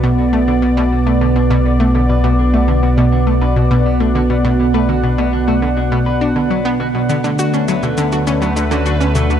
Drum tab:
SH |----------------|----------------|----------------|xxxxxxxxxxxxxxxx|
T1 |----------------|----------------|----------------|-----o--------o-|